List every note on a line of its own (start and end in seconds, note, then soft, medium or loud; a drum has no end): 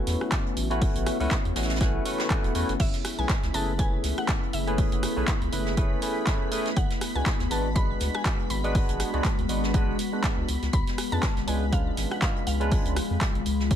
0.00 0.67 A3 medium
0.00 13.76 B3 medium
0.00 0.67 C#4 medium
0.00 2.76 C#4 medium
0.00 0.67 E4 medium
0.00 6.73 E4 medium
0.00 0.68 F#4 medium
0.00 0.80 F#4 medium
0.00 0.68 B4 medium
0.00 2.26 F#5 loud
0.07 0.16 E2 loud
0.07 snare soft
0.07 closed hi-hat medium
0.07 open hi-hat loud
0.21 cross-stick medium
0.31 kick loud
0.31 snare loud
0.31 clap loud
0.31 closed hi-hat medium
0.46 closed hi-hat soft
0.56 0.87 A1 medium
0.56 closed hi-hat medium
0.56 open hi-hat loud
0.70 1.17 A3 loud
0.70 1.17 C#4 medium
0.70 1.17 E4 loud
0.70 1.17 F#4 medium
0.70 1.17 B4 loud
0.70 closed hi-hat medium
0.81 6.72 G#4 medium
0.81 kick loud
0.81 closed hi-hat medium
0.81 open hi-hat medium
0.96 1.09 A1 medium
0.96 closed hi-hat medium
0.96 closed hi-hat soft
1.06 cross-stick medium
1.06 closed hi-hat medium
1.06 open hi-hat loud
1.20 1.27 C#2 medium
1.20 1.35 A3 medium
1.20 1.35 C#4 medium
1.20 1.35 E4 medium
1.20 1.36 F#4 medium
1.20 1.36 B4 loud
1.20 open hi-hat medium
1.31 kick loud
1.31 snare loud
1.31 clap loud
1.31 closed hi-hat medium
1.45 1.52 E2 medium
1.45 closed hi-hat soft
1.55 1.99 A1 medium
1.55 1.77 A3 medium
1.55 1.77 C#4 medium
1.55 1.78 E4 medium
1.55 1.78 F#4 medium
1.55 1.78 B4 medium
1.55 snare medium
1.55 closed hi-hat medium
1.55 open hi-hat loud
1.63 snare medium
1.63 closed hi-hat medium
1.69 snare medium
1.69 closed hi-hat medium
1.69 closed hi-hat soft
1.76 snare medium
1.76 closed hi-hat medium
1.80 2.03 A3 loud
1.80 2.03 C#4 medium
1.80 2.03 E4 medium
1.80 2.03 F#4 medium
1.80 2.03 B4 loud
1.80 kick loud
1.80 snare loud
1.80 closed hi-hat medium
2.05 2.27 A3 medium
2.05 2.28 C#4 medium
2.05 2.28 E4 medium
2.05 2.28 F#4 medium
2.05 2.28 B4 medium
2.05 closed hi-hat medium
2.05 open hi-hat loud
2.20 snare loud
2.20 clap soft
2.20 closed hi-hat soft
2.20 closed hi-hat medium
2.30 2.52 A3 medium
2.30 2.52 C#4 medium
2.30 2.53 E4 medium
2.30 2.53 F#4 medium
2.30 2.53 B4 medium
2.30 kick loud
2.30 clap loud
2.30 closed hi-hat medium
2.44 2.51 E1 loud
2.44 closed hi-hat soft
2.44 closed hi-hat medium
2.55 2.64 E2 loud
2.55 2.72 A3 medium
2.55 2.72 C#4 medium
2.55 2.72 E4 medium
2.55 2.73 F#4 medium
2.55 2.73 B4 loud
2.55 closed hi-hat medium
2.55 open hi-hat loud
2.69 2.76 F#1 loud
2.69 snare medium
2.69 closed hi-hat medium
2.80 2.88 F#1 loud
2.80 6.73 A3 medium
2.80 3.20 E5 loud
2.80 13.76 B5 medium
2.80 kick loud
2.80 closed hi-hat medium
2.80 closed hi-hat loud
2.80 crash medium
2.94 snare soft
2.94 closed hi-hat medium
3.05 cross-stick medium
3.05 closed hi-hat medium
3.05 open hi-hat loud
3.18 3.25 B1 medium
3.18 3.34 A3 medium
3.18 3.34 C#4 medium
3.18 3.34 E4 medium
3.18 3.34 G#4 medium
3.18 3.34 B4 medium
3.18 3.55 G#5 loud
3.29 kick loud
3.29 snare loud
3.29 clap loud
3.29 closed hi-hat medium
3.43 3.50 C#2 medium
3.43 snare medium
3.43 closed hi-hat soft
3.54 3.97 F#1 medium
3.54 3.71 A3 medium
3.54 3.71 C#4 medium
3.54 3.72 E4 medium
3.54 3.72 G#4 medium
3.54 3.72 B4 loud
3.54 3.80 A5 loud
3.54 closed hi-hat medium
3.54 open hi-hat loud
3.78 4.64 A3 medium
3.78 4.64 C#4 medium
3.78 4.64 E4 medium
3.78 4.64 G#4 medium
3.78 4.65 B4 medium
3.78 4.19 G#5 loud
3.78 kick loud
3.78 closed hi-hat medium
4.04 4.12 C#2 loud
4.04 snare soft
4.04 closed hi-hat medium
4.04 open hi-hat loud
4.18 4.54 F#5 loud
4.18 cross-stick medium
4.28 kick loud
4.28 snare loud
4.28 clap loud
4.28 closed hi-hat medium
4.43 closed hi-hat soft
4.53 4.83 F#1 medium
4.53 6.48 E5 medium
4.53 closed hi-hat medium
4.53 open hi-hat loud
4.67 5.13 A3 loud
4.67 5.14 C#4 loud
4.67 5.14 E4 medium
4.67 5.14 G#4 medium
4.67 5.14 B4 loud
4.67 closed hi-hat medium
4.78 kick loud
4.78 closed hi-hat medium
4.78 open hi-hat medium
4.92 5.06 F#1 medium
4.92 closed hi-hat medium
4.92 closed hi-hat soft
5.03 cross-stick medium
5.03 closed hi-hat medium
5.03 open hi-hat loud
5.16 5.24 B1 medium
5.16 5.32 A3 medium
5.16 5.32 C#4 medium
5.16 5.32 E4 medium
5.16 5.32 G#4 medium
5.16 5.32 B4 loud
5.28 kick loud
5.28 snare loud
5.28 clap loud
5.28 closed hi-hat medium
5.42 5.48 C#2 medium
5.42 closed hi-hat soft
5.52 5.95 F#1 medium
5.52 5.74 A3 medium
5.52 5.74 C#4 medium
5.52 5.74 E4 medium
5.52 5.74 G#4 medium
5.52 5.74 B4 medium
5.52 closed hi-hat medium
5.52 open hi-hat loud
5.66 snare medium
5.77 5.99 A3 loud
5.77 6.00 C#4 medium
5.77 6.00 E4 medium
5.77 6.00 G#4 medium
5.77 6.00 B4 loud
5.77 kick loud
5.77 closed hi-hat medium
6.02 6.24 A3 medium
6.02 6.24 C#4 medium
6.02 6.24 E4 medium
6.02 6.25 G#4 medium
6.02 6.25 B4 medium
6.02 closed hi-hat medium
6.02 open hi-hat loud
6.26 6.49 A3 medium
6.26 6.49 C#4 medium
6.26 6.49 E4 medium
6.26 6.49 G#4 medium
6.26 6.50 B4 medium
6.26 kick loud
6.26 snare loud
6.26 clap loud
6.26 closed hi-hat medium
6.51 6.69 A3 medium
6.51 6.69 C#4 medium
6.51 6.69 E4 medium
6.51 6.69 G#4 medium
6.51 6.69 B4 loud
6.51 closed hi-hat medium
6.51 open hi-hat loud
6.66 snare medium
6.66 closed hi-hat medium
6.76 6.85 G#1 loud
6.76 10.45 G#3 medium
6.76 10.45 F#4 medium
6.76 7.17 F#5 loud
6.76 kick loud
6.76 closed hi-hat medium
6.91 snare soft
6.91 closed hi-hat medium
7.01 cross-stick medium
7.01 closed hi-hat medium
7.01 open hi-hat loud
7.15 7.22 C#2 medium
7.15 7.30 G#3 medium
7.15 7.30 B3 medium
7.15 7.31 D4 medium
7.15 7.31 F#4 medium
7.15 7.31 B4 medium
7.15 7.52 G#5 loud
7.26 kick loud
7.26 snare loud
7.26 clap loud
7.26 closed hi-hat medium
7.40 7.47 D2 medium
7.40 snare soft
7.40 closed hi-hat soft
7.50 7.94 G#1 medium
7.50 7.68 G#3 medium
7.50 7.68 B3 medium
7.50 7.68 D4 medium
7.50 7.68 F#4 medium
7.50 7.69 B4 loud
7.50 7.76 A5 loud
7.50 closed hi-hat medium
7.50 open hi-hat loud
7.75 8.60 G#3 medium
7.75 8.61 B3 medium
7.75 8.61 D4 medium
7.75 8.61 F#4 medium
7.75 8.61 B4 medium
7.75 8.16 B5 loud
7.75 kick loud
7.75 closed hi-hat medium
8.00 8.09 D2 medium
8.00 snare soft
8.00 closed hi-hat medium
8.00 open hi-hat loud
8.14 8.51 G#5 loud
8.14 cross-stick medium
8.25 kick loud
8.25 snare loud
8.25 clap loud
8.25 closed hi-hat medium
8.39 closed hi-hat soft
8.50 8.80 G#1 medium
8.50 10.44 B5 loud
8.50 closed hi-hat medium
8.50 open hi-hat loud
8.64 9.10 G#3 loud
8.64 9.10 B3 loud
8.64 9.10 D4 loud
8.64 9.11 F#4 medium
8.64 9.11 B4 loud
8.64 closed hi-hat medium
8.75 kick loud
8.75 closed hi-hat medium
8.75 open hi-hat medium
8.89 9.03 G#1 medium
8.89 closed hi-hat medium
8.89 closed hi-hat soft
9.00 cross-stick medium
9.00 closed hi-hat medium
9.00 open hi-hat loud
9.13 9.20 C#2 medium
9.13 9.29 G#3 loud
9.13 9.29 B3 medium
9.13 9.29 D4 medium
9.13 9.29 F#4 medium
9.13 9.29 B4 loud
9.13 closed hi-hat soft
9.24 kick loud
9.24 snare loud
9.24 clap loud
9.24 closed hi-hat medium
9.39 9.45 D2 medium
9.39 closed hi-hat soft
9.49 9.92 G#1 medium
9.49 9.71 G#3 medium
9.49 9.71 B3 medium
9.49 9.71 D4 medium
9.49 9.71 F#4 medium
9.49 9.71 B4 loud
9.49 closed hi-hat medium
9.49 open hi-hat loud
9.64 snare medium
9.73 9.96 G#3 loud
9.73 9.96 B3 medium
9.73 9.96 D4 medium
9.73 9.96 F#4 medium
9.73 9.97 B4 loud
9.73 kick loud
9.73 closed hi-hat medium
9.99 closed hi-hat medium
9.99 open hi-hat loud
10.12 10.47 G#3 medium
10.12 10.47 B3 medium
10.12 10.47 D4 medium
10.12 10.47 F#4 medium
10.12 10.47 B4 medium
10.23 kick loud
10.23 snare loud
10.23 clap loud
10.23 closed hi-hat medium
10.38 10.44 C#2 medium
10.49 10.57 C#2 medium
10.49 13.76 G#3 medium
10.49 13.76 F4 medium
10.49 closed hi-hat medium
10.49 open hi-hat loud
10.63 10.69 C#2 medium
10.63 snare medium
10.63 closed hi-hat medium
10.73 10.82 C#2 medium
10.73 11.13 B5 loud
10.73 kick loud
10.73 closed hi-hat medium
10.87 snare soft
10.87 closed hi-hat medium
10.98 cross-stick medium
10.98 closed hi-hat medium
10.98 open hi-hat loud
11.12 11.19 F2 medium
11.12 11.27 G#3 medium
11.12 11.27 C#4 medium
11.12 11.27 D4 medium
11.12 11.27 F4 medium
11.12 11.27 B4 medium
11.12 11.49 A5 loud
11.23 kick loud
11.23 snare loud
11.23 clap loud
11.23 closed hi-hat medium
11.37 11.44 G#1 medium
11.37 snare soft
11.37 closed hi-hat soft
11.47 11.91 C#2 medium
11.47 11.65 G#3 medium
11.47 11.65 C#4 medium
11.47 11.65 D4 medium
11.47 11.65 F4 medium
11.47 11.65 B4 loud
11.47 11.73 G#5 loud
11.47 closed hi-hat medium
11.47 open hi-hat loud
11.71 12.57 G#3 medium
11.71 12.57 C#4 medium
11.71 12.58 D4 medium
11.71 12.58 F4 medium
11.71 12.58 B4 medium
11.71 12.13 F5 medium
11.71 kick loud
11.71 closed hi-hat medium
11.97 12.06 G#1 loud
11.97 snare soft
11.97 closed hi-hat medium
11.97 open hi-hat loud
12.11 12.21 F#5 medium
12.11 cross-stick medium
12.22 12.46 F5 medium
12.22 kick loud
12.22 snare loud
12.22 clap loud
12.22 closed hi-hat medium
12.36 closed hi-hat soft
12.47 12.77 C#2 medium
12.47 13.17 F5 medium
12.47 closed hi-hat medium
12.47 open hi-hat loud
12.60 12.96 G#3 loud
12.60 12.96 C#4 loud
12.60 12.96 D4 medium
12.60 12.96 F4 loud
12.60 12.97 B4 loud
12.60 closed hi-hat medium
12.72 kick loud
12.72 closed hi-hat medium
12.72 open hi-hat medium
12.86 12.99 C#2 medium
12.86 closed hi-hat medium
12.86 closed hi-hat soft
12.96 cross-stick medium
12.96 closed hi-hat medium
12.96 open hi-hat loud
13.11 13.17 F2 medium
13.21 kick loud
13.21 snare loud
13.21 clap loud
13.21 closed hi-hat medium
13.35 13.42 G#1 medium
13.35 closed hi-hat soft
13.46 13.76 C#2 medium
13.46 closed hi-hat medium
13.46 open hi-hat loud
13.60 snare medium
13.71 kick loud
13.71 closed hi-hat medium